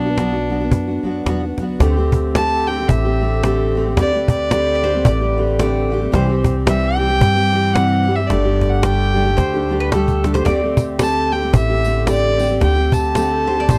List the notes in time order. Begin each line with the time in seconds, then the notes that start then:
Already playing: B1 D4
0.06 B3 D4 F#4
0.17 B2 F#3 B3 D4 F#4, cajon slap
0.32 B3 D4 F#4
0.50 F#3 B3 D4 F#4
0.60 B3 D4 F#4, cajon slap
0.71 F#2, cajon bass
0.87 B3 D4 F#4
1.03 F#2 F#3 B3 D4 F#4, cajon slap
1.25 E2 B2 F#3 B3 D4 F#4, cajon slap
1.43 B3 D4 F#4
1.58 D2 F#3 B3 D4, cajon bass, cajon slap
1.63 F#4
1.80 D2 D3 A3 C4 G4, cajon bass, cajon slap
1.97 A3 C4 G4
2.12 cajon bass
2.35 D3 A3 C4 G4 A5, cajon slap
2.67 D3 A3 C4 G4 G5
2.79 A3 C4 G4
2.89 A1 E5, cajon bass
3.05 A3 C4 G4
3.21 D3 A3 C4 G4
3.43 D3 A3 C4 G4, cajon slap
3.75 D3 A3 C4 G4
3.86 A3 C4 G4
3.97 D2 D3 A3 C4 G4 B4 D5, cajon bass, cajon slap
4.13 A3 C4 G4
4.28 D5, cajon bass
4.51 D3 A3 C4 G4, cajon slap
4.75 D5
4.82 D3 A3 C4 G4 C5
4.94 A3 C4 G4
5.05 A1 D5, cajon bass
5.21 A3 C4 G4
5.37 D3 A3 C4 G4
5.59 D3 A3 C4 G4 D5, cajon slap
5.90 D3 A3 C4 G4
6.01 A3 C4 G4
6.12 C2 C3 E3 G3 C4 G4 C5, cajon bass, cajon slap
6.27 G3 C4 G4
6.44 cajon bass
6.66 C3 E3 G3 C4 G4 E5, cajon slap
6.97 E3 G3 C4 G4 G5
7.09 G3 C4 G4
7.20 G2, cajon bass
7.35 G3 C4 G4
7.53 E3 G3 C4 G4
7.74 C3 E3 G3 C4 G4 F#5, cajon slap
8.07 E3 G3 C4 G4
8.16 G4 E5
8.20 G3 C4
8.27 G1 D3 G3 A3 D5, cajon bass, cajon slap
8.32 D4 G4
8.45 A3 D4 G4
8.61 cajon bass, cajon slap
8.70 F#5
8.82 G3 A3 D4 G4 G5, cajon slap
9.14 G3 A3 D4 G4
9.25 A3 D4 G4, cajon slap
9.37 D2 C5, cajon bass, cajon slap
9.54 A3 D4 G4, cajon slap
9.69 G3 A3 D4 G4
9.80 B4
9.92 G3 A3 D4 G4 A4, cajon slap
10.08 cajon bass
10.24 G3 A3 D4 G4, cajon slap
10.34 D4 G4 C5, cajon slap
10.39 A3
10.45 D2 D3 A3 C4 G4 D5, cajon bass, cajon slap
10.62 A3 C4 G4
10.77 cajon bass, tambourine
10.99 D3 A3 C4 G4 A5, cajon slap, tambourine
11.31 D3 A3 C4 G4 G5
11.42 A3 C4 G4
11.53 A1 E5, cajon bass, tambourine
11.70 A3 C4 G4
11.84 D3 A3 C4 G4, tambourine
12.06 D3 A3 C4 G4, cajon slap, tambourine
12.10 D5
12.37 D3 A3 C4 G4, tambourine
12.49 A3 C4 G4
12.60 D2 D3 A3 C4 G4 G5, cajon bass, cajon slap
12.76 A3 C4 G4
12.92 A5, cajon bass, tambourine
13.15 D3 A3 C4 G4, cajon slap, tambourine
13.46 D3 A3 C4 G4 C5
13.57 A3 C4 G4 D5
13.69 A1 C5, cajon bass, tambourine